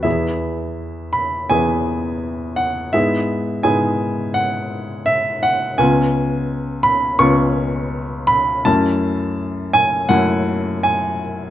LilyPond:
\new Staff \with { instrumentName = "Grand piano" } { \time 4/4 \key e \major \tempo 4 = 84 << { e''4. b''8 gis''4. fis''8 | e''4 gis''4 fis''4 e''8 fis''8 | gis''4. b''8 cis'''4. b''8 | a''4. gis''8 fis''4 gis''8 r8 | } \\ { <e, b e' gis'>2 <e, b e' gis'>2 | <gis, b e' gis'>4 <gis, b e' gis'>2. | <cis, b cis' eis'>2 <cis, b cis' eis'>2 | <fis, a cis' e'>2 <fis, a cis' e'>2 | } >> }